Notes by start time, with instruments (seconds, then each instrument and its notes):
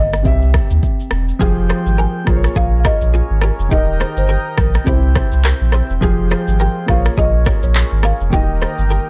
Already playing: sub bass G1, grand piano D#3 A#3 G4 D#5, marimba D#5
0.13 cross-stick, shaker
0.23 sub bass C2, grand piano C3 C4 G4, marimba E5, kick, shaker
0.28 grand piano E5
0.42 shaker
0.54 kick, cross-stick, shaker
0.70 sub bass D#2, shaker
0.83 kick, shaker
1.00 shaker
1.11 sub bass E1, cross-stick, shaker
1.29 shaker
1.39 sub bass F1, grand piano F3 F4 G4 G#4, accordion F3 G#3 C4 G5, clean electric guitar F4 G#4, kick, shaker
1.69 clean electric guitar G#4 C5, cross-stick, shaker
1.86 sub bass G#1, shaker
1.98 clean electric guitar G4 A#4, marimba G#5, shaker
2.25 sub bass A#1, accordion G#3 A#3 C#4, grand piano A#3 F4 G#4, kick, cross-stick, shaker
2.30 grand piano C5
2.36 grand piano C#5
2.44 cross-stick, shaker
2.56 sub bass A#1, clean electric guitar F4 G#4, marimba F5, kick, shaker
2.80 marimba F5
2.85 clean electric guitar G4 A#4, marimba D#5, kick, cross-stick, shaker
3.01 sub bass A#1, shaker
3.14 clean electric guitar F4 G#4, shaker
3.30 sub bass G#1
3.41 clean electric guitar G4 A#4, marimba C#5, cross-stick, shaker
3.59 sub bass F1, shaker
3.69 sub bass D#1, grand piano D#3 D#4 G4, accordion D#3 D#4 A#4 G5, clean electric guitar D#4 G4, marimba D#5, kick, shaker
3.74 grand piano A#4
4.00 clean electric guitar G#4 C5, cross-stick, shaker
4.17 sub bass G1, marimba C5, shaker
4.29 clean electric guitar G4 A#4, shaker
4.58 sub bass A#1, marimba A#4, kick, cross-stick, shaker
4.75 cross-stick, shaker
4.84 sub bass C2, grand piano C3 C4 E4, accordion C3 C4 E4, clean electric guitar E4 G4, marimba C5, kick, shaker
4.89 grand piano G4
5.15 clean electric guitar G#4 C5, kick, cross-stick, shaker
5.32 sub bass C2, shaker
5.44 clean electric guitar G4 A#4, clap, shaker
5.61 sub bass A#1
5.72 clean electric guitar G#4 C5, cross-stick, shaker
5.90 sub bass E1, shaker
6.01 sub bass F1, grand piano F3 F4 G4 G#4, accordion F3 G#3, clean electric guitar F4 G#4, kick, shaker
6.31 clean electric guitar G#4 C5, cross-stick, shaker
6.48 sub bass G#1, shaker
6.60 clean electric guitar G4 A#4, marimba G5, shaker
6.86 sub bass A#1, accordion G#3 A#3 C#4, grand piano A#3 F4 G#4, marimba F5, kick, cross-stick, shaker
6.91 grand piano C5
6.98 grand piano C#5
7.05 cross-stick, shaker
7.17 sub bass A#1, clean electric guitar F4 G#4, marimba D#5, kick, shaker
7.46 clean electric guitar G4 A#4, marimba C#5, kick, cross-stick, shaker
7.63 sub bass A#1, marimba C#5, shaker
7.75 clean electric guitar F4 G#4, clap, shaker
7.92 sub bass G#1
8.03 clean electric guitar G4 A#4, marimba F5, cross-stick, shaker
8.21 sub bass F1, shaker
8.30 sub bass D#1, grand piano D#3 A#3 F#4, accordion D#3 D#4 G4 A#4, clean electric guitar D#4 G4, marimba G5, kick, shaker
8.35 grand piano D#5
8.40 grand piano G4
8.62 clean electric guitar G#4 C5, cross-stick, shaker
8.78 sub bass G1, shaker
8.90 clean electric guitar G4 A#4, shaker